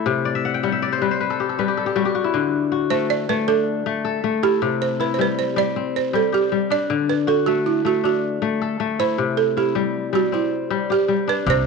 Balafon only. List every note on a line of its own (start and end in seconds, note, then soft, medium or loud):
2.90 3.10 C5 medium
3.10 3.30 D5 medium
3.29 3.49 B4 medium
3.48 4.46 A4 medium
4.43 4.82 G4 medium
4.82 5.01 C5 medium
5.01 5.14 B4 medium
5.14 5.19 C5 medium
5.21 5.40 B4 medium
5.39 5.47 C5 medium
5.58 5.97 D5 medium
5.96 6.15 C5 medium
6.16 6.34 A4 medium
6.34 6.73 G4 medium
6.72 7.07 D5 medium
7.09 7.18 B4 medium
7.28 7.48 A4 medium
7.46 7.66 F#4 medium
7.66 7.86 E4 medium
7.86 8.04 F#4 medium
8.05 8.77 F#4 medium
9.00 9.35 C5 medium
9.37 9.55 A4 medium
9.58 10.16 G4 medium
10.15 10.34 F#4 medium
10.34 11.05 E4 medium
10.92 11.30 G4 medium
11.29 11.48 B4 medium
11.50 11.58 C5 loud